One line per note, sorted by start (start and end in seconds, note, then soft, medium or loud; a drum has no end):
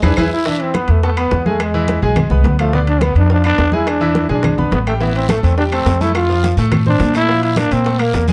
0.02 0.13 E2 medium
0.02 0.20 D4 medium
0.02 0.12 E4 medium
0.02 0.12 G#4 loud
0.02 0.12 B4 medium
0.02 cowbell loud
0.02 high conga loud
0.02 high timbale medium
0.02 claves loud
0.17 0.28 E2 loud
0.17 0.27 E4 loud
0.17 0.32 E4 medium
0.17 0.27 G#4 medium
0.17 0.27 B4 loud
0.17 cowbell loud
0.17 high conga loud
0.17 high timbale loud
0.17 long guiro loud
0.17 claves loud
0.33 0.49 E4 loud
0.46 0.69 E3 medium
0.46 0.63 D4 medium
0.46 0.70 E4 medium
0.46 0.70 E5 medium
0.46 high bongo medium
0.46 high conga soft
0.60 0.77 C4 medium
0.60 high conga soft
0.60 high timbale medium
0.74 0.98 B3 medium
0.74 0.92 B3 medium
0.74 0.98 B4 medium
0.74 0.98 B5 medium
0.74 high bongo medium
0.74 high conga medium
0.74 high timbale medium
0.74 low timbale medium
0.74 claves medium
0.88 1.28 E2 medium
0.88 1.04 A3 medium
0.88 high conga soft
0.88 high timbale medium
1.03 1.15 A3 medium
1.03 1.11 B3 medium
1.03 1.15 A4 medium
1.03 1.15 A5 medium
1.03 high bongo medium
1.03 high conga soft
1.17 1.40 B3 medium
1.17 1.48 B3 medium
1.17 1.40 B4 medium
1.17 1.41 B5 medium
1.17 high conga soft
1.17 high timbale medium
1.17 claves medium
1.31 1.97 E2 medium
1.31 high bongo medium
1.31 low bongo medium
1.31 high conga soft
1.31 high timbale medium
1.31 low timbale medium
1.46 1.69 G#3 medium
1.46 1.60 A3 medium
1.46 1.69 G#4 medium
1.46 1.69 G#5 medium
1.46 high conga medium
1.60 2.01 G#3 medium
1.60 high bongo medium
1.60 high conga soft
1.60 high timbale loud
1.60 claves medium
1.74 1.97 E3 medium
1.74 1.97 E4 medium
1.74 1.98 E5 medium
1.74 high bongo soft
1.74 high conga soft
1.88 high bongo medium
1.88 high conga medium
1.88 high timbale medium
1.88 low timbale medium
2.02 2.29 B1 medium
2.02 2.26 G#3 medium
2.02 2.47 G#3 medium
2.02 2.26 G#4 medium
2.02 2.26 G#5 medium
2.02 high bongo soft
2.02 high conga soft
2.16 high bongo medium
2.16 high conga soft
2.16 low conga medium
2.16 high timbale loud
2.16 claves medium
2.30 2.43 C2 medium
2.30 2.54 B3 medium
2.30 2.54 B4 medium
2.30 2.54 B5 medium
2.30 high conga soft
2.30 low conga medium
2.44 3.10 D2 medium
2.44 2.59 B3 medium
2.44 high bongo medium
2.44 low bongo medium
2.44 high conga medium
2.44 high timbale medium
2.44 low timbale medium
2.59 2.71 F3 medium
2.59 2.73 A3 medium
2.59 2.71 F4 medium
2.59 2.71 F5 medium
2.59 high bongo soft
2.59 high timbale medium
2.59 claves medium
2.73 2.97 D3 medium
2.73 2.81 B3 medium
2.73 2.97 D4 medium
2.73 2.98 D5 medium
2.73 high bongo medium
2.73 high conga soft
2.87 3.04 D4 medium
2.87 high conga soft
2.87 high timbale medium
3.01 3.16 B3 medium
3.01 3.25 B3 medium
3.01 3.26 B4 medium
3.01 3.26 B5 medium
3.01 high bongo medium
3.01 high conga medium
3.01 high timbale medium
3.01 low timbale medium
3.01 claves medium
3.15 3.55 F2 medium
3.15 3.30 D4 medium
3.15 high conga soft
3.15 high timbale medium
3.30 3.42 F3 medium
3.30 3.44 D4 loud
3.30 3.42 F4 medium
3.30 3.42 F5 medium
3.30 high bongo medium
3.30 high conga soft
3.44 3.68 B3 medium
3.44 3.76 D4 loud
3.44 3.68 B4 medium
3.44 3.68 B5 medium
3.44 high conga soft
3.44 high timbale medium
3.44 claves medium
3.58 4.24 E2 medium
3.58 high bongo medium
3.58 low bongo medium
3.58 high conga soft
3.58 high timbale medium
3.58 low timbale medium
3.72 3.96 G#3 medium
3.72 3.89 E4 medium
3.72 3.96 G#4 medium
3.72 3.97 G#5 medium
3.72 high conga medium
3.87 4.30 D4 loud
3.87 high bongo medium
3.87 high conga soft
3.87 high timbale loud
3.87 claves medium
4.01 4.24 E3 medium
4.01 4.25 E4 medium
4.01 4.25 E5 medium
4.01 high bongo soft
4.01 high conga soft
4.15 high bongo medium
4.15 high conga loud
4.15 high timbale medium
4.15 low timbale medium
4.29 4.56 B1 loud
4.29 4.53 G#3 medium
4.29 4.70 D4 medium
4.29 4.53 G#4 medium
4.29 4.53 G#5 medium
4.29 high bongo soft
4.29 high conga soft
4.43 high bongo medium
4.43 high conga soft
4.43 low conga medium
4.43 high timbale medium
4.43 claves medium
4.58 4.71 B1 medium
4.58 4.81 B3 medium
4.58 4.82 B4 medium
4.58 4.82 B5 medium
4.58 high conga soft
4.58 low conga medium
4.71 5.38 A1 medium
4.71 4.80 B3 medium
4.71 high bongo medium
4.71 low bongo medium
4.71 high conga medium
4.71 high timbale medium
4.71 low timbale medium
4.86 4.99 G3 medium
4.86 4.93 A3 medium
4.86 4.99 G4 medium
4.86 4.99 G5 medium
4.86 high bongo soft
4.86 high conga soft
4.86 high timbale medium
4.86 claves medium
5.01 5.24 E3 medium
5.01 5.14 B3 loud
5.01 5.24 E4 medium
5.01 5.25 E5 medium
5.01 high bongo medium
5.01 high conga soft
5.01 long guiro medium
5.15 5.31 C4 loud
5.15 high conga soft
5.15 high timbale medium
5.29 5.43 A3 medium
5.29 5.53 A3 medium
5.29 5.53 A4 medium
5.29 5.53 A5 medium
5.29 high bongo medium
5.29 high conga loud
5.29 high timbale medium
5.29 low timbale medium
5.29 short guiro medium
5.29 claves medium
5.43 5.83 E2 medium
5.43 5.57 C4 medium
5.43 high conga soft
5.43 high timbale medium
5.43 short guiro medium
5.58 5.70 G3 medium
5.58 5.64 D4 loud
5.58 5.70 G4 medium
5.58 5.70 G5 medium
5.58 high bongo medium
5.58 high conga soft
5.58 long guiro medium
5.72 5.96 A3 medium
5.72 6.03 C4 loud
5.72 5.96 A4 medium
5.72 5.96 A5 medium
5.72 high conga soft
5.72 high timbale loud
5.72 claves medium
5.85 6.52 F2 medium
5.85 high bongo medium
5.85 low bongo medium
5.85 high conga soft
5.85 high timbale medium
5.85 low timbale medium
5.85 short guiro medium
6.01 6.24 A3 medium
6.01 6.15 E4 loud
6.01 6.24 A4 medium
6.01 6.24 A5 medium
6.01 high conga medium
6.01 short guiro medium
6.15 6.55 F4 loud
6.15 high bongo medium
6.15 high conga soft
6.15 high timbale medium
6.15 long guiro medium
6.15 claves medium
6.29 6.52 F3 medium
6.29 6.53 F4 medium
6.29 6.53 F5 loud
6.29 high bongo soft
6.29 high conga soft
6.44 high bongo medium
6.44 high conga medium
6.44 high timbale medium
6.44 low timbale medium
6.44 short guiro medium
6.57 6.97 A2 medium
6.57 6.81 A3 medium
6.57 6.82 A4 medium
6.57 6.82 A5 medium
6.57 high bongo soft
6.57 short guiro medium
6.72 high bongo medium
6.72 high conga soft
6.72 low conga medium
6.72 high timbale loud
6.72 long guiro medium
6.72 claves medium
6.86 7.10 C4 medium
6.86 7.14 D4 loud
6.86 7.10 C5 medium
6.86 7.10 C6 medium
6.86 high conga soft
6.86 low conga medium
7.00 7.66 A#2 loud
7.00 high bongo medium
7.00 low bongo medium
7.00 high conga medium
7.00 high timbale medium
7.00 low timbale medium
7.00 short guiro medium
7.13 7.26 A3 medium
7.13 7.42 E4 loud
7.13 7.26 A4 medium
7.13 7.26 A5 medium
7.13 high bongo soft
7.13 high conga soft
7.13 high timbale medium
7.13 short guiro medium
7.13 claves medium
7.28 7.52 F3 medium
7.28 7.52 F4 medium
7.28 7.52 F5 medium
7.28 high bongo medium
7.28 high conga soft
7.28 long guiro medium
7.42 7.59 E4 loud
7.42 high conga soft
7.42 high timbale medium
7.56 7.80 A#3 medium
7.56 7.74 D4 loud
7.56 7.81 A#4 medium
7.56 7.81 A#5 medium
7.56 high bongo medium
7.56 high conga loud
7.56 high timbale medium
7.56 low timbale medium
7.56 short guiro medium
7.56 claves medium
7.71 8.11 A#2 medium
7.71 8.03 C4 medium
7.71 high conga soft
7.71 high timbale medium
7.71 short guiro medium
7.84 7.98 A3 medium
7.84 7.98 A4 medium
7.84 7.98 A5 medium
7.84 high bongo medium
7.84 high conga soft
7.84 long guiro medium
7.99 8.23 A#3 medium
7.99 8.29 A#3 loud
7.99 8.23 A#4 medium
7.99 8.23 A#5 medium
7.99 high conga soft
7.99 high timbale medium
7.99 claves medium
8.13 8.33 E2 loud
8.13 high bongo medium
8.13 low bongo medium
8.13 high conga soft
8.13 high timbale medium
8.13 low timbale medium
8.13 short guiro medium
8.28 8.33 G#3 medium
8.28 8.33 G#4 medium
8.28 8.33 G#5 medium
8.28 high conga medium
8.28 short guiro medium